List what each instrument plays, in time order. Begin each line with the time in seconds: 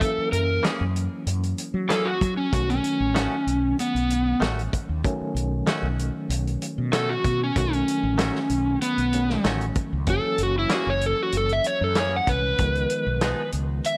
0.00 tine electric piano E3 F#3 A#3 C#4, electric slide guitar A4, kick, closed hi-hat
0.18 muted fretless electric bass stroke
0.32 fretless electric bass F#2, electric slide guitar A#4, closed hi-hat
0.63 clean electric guitar E3 A#3 C#4 G#4, snare, closed hi-hat
0.81 fretless electric bass F#2
0.96 closed hi-hat
1.26 fretless electric bass F#2, closed hi-hat
1.43 closed hi-hat
1.58 closed hi-hat
1.74 fretless electric bass F#3
1.89 clean electric guitar E3 A#3 C#4 G#4, electric slide guitar A4, snare, closed hi-hat
2.05 electric slide guitar F#4
2.21 fretless electric bass F#3, kick, closed hi-hat
2.37 electric slide guitar C#4
2.52 fretless electric bass B1, tine electric piano D#3 F#3 A3 C#4, electric slide guitar F#4, kick, closed hi-hat
2.70 electric slide guitar C#4, closed hi-hat
2.84 closed hi-hat
3.00 fretless electric bass A1
3.15 clean electric guitar D#3 A3 C#4 F#4, snare, closed hi-hat
3.47 fretless electric bass B1, closed hi-hat
3.79 electric slide guitar B3, closed hi-hat
3.95 fretless electric bass B1, closed hi-hat
4.10 closed hi-hat
4.40 fretless electric bass A1, clean electric guitar D#3 A3 C#4 F#4, snare, closed hi-hat
4.59 closed hi-hat
4.73 kick, closed hi-hat
4.89 fretless electric bass D#2
5.04 tine electric piano D#3 F#3 A3 C#4, kick, closed hi-hat
5.21 muted fretless electric bass stroke
5.35 fretless electric bass B1, closed hi-hat
5.67 clean electric guitar D#3 A3 C#4 F#4, snare, closed hi-hat
5.83 fretless electric bass B1
5.99 closed hi-hat
6.29 fretless electric bass B1, closed hi-hat
6.47 closed hi-hat
6.62 closed hi-hat
6.78 fretless electric bass B2
6.92 clean electric guitar D#3 A3 C#4 F#4, electric slide guitar A4, snare, closed hi-hat
7.09 electric slide guitar F#4
7.24 fretless electric bass B2, kick, closed hi-hat
7.44 electric slide guitar C#4
7.56 fretless electric bass B1, tine electric piano D#3 F#3 A3 C#4, electric slide guitar F#4, kick, closed hi-hat
7.73 electric slide guitar C#4, closed hi-hat
7.88 closed hi-hat
8.03 fretless electric bass A1
8.18 clean electric guitar D#3 A3 C#4 F#4, snare, closed hi-hat
8.35 snare
8.49 fretless electric bass B1, closed hi-hat
8.81 electric slide guitar B3, closed hi-hat
8.98 fretless electric bass B1, closed hi-hat
9.13 tine electric piano D#3 F#3 A3 C#4, closed hi-hat
9.30 snare
9.44 fretless electric bass A1, clean electric guitar D#3 A3 C#4 F#4, snare, closed hi-hat
9.61 closed hi-hat
9.75 kick, closed hi-hat
9.93 fretless electric bass C#2
10.06 fretless electric bass F#1, tine electric piano E3 F#3 A#3 C#4, electric slide guitar A4, kick, closed hi-hat
10.38 fretless electric bass F#1, closed hi-hat
10.43 electric slide guitar F#4
10.59 electric slide guitar E4
10.69 clean electric guitar E3 A#3 C#4 G#4, snare, closed hi-hat
10.74 electric slide guitar F#4
10.87 fretless electric bass F#1, electric slide guitar C#5
11.01 closed hi-hat
11.06 electric slide guitar A4
11.23 electric slide guitar F#4
11.32 fretless electric bass F#1, closed hi-hat
11.37 electric slide guitar A4
11.49 electric slide guitar E5, closed hi-hat
11.64 electric slide guitar C#5, closed hi-hat
11.81 fretless electric bass F#2, electric slide guitar A4
11.95 clean electric guitar E3 A#3 C#4 G#4, snare, closed hi-hat
11.99 electric slide guitar C#5
12.16 electric slide guitar F#5
12.27 fretless electric bass C2, tine electric piano A#2 E3 G#3 C#4, electric slide guitar B4, kick, closed hi-hat
12.58 fretless electric bass C#2, tine electric piano D#3 F3 G#3 B3, kick, closed hi-hat
12.75 closed hi-hat
12.90 closed hi-hat
13.07 fretless electric bass B1
13.21 clean electric guitar F3 B3 D#4 G#4, snare, closed hi-hat
13.52 fretless electric bass C#2, closed hi-hat
13.84 electric slide guitar E5, closed hi-hat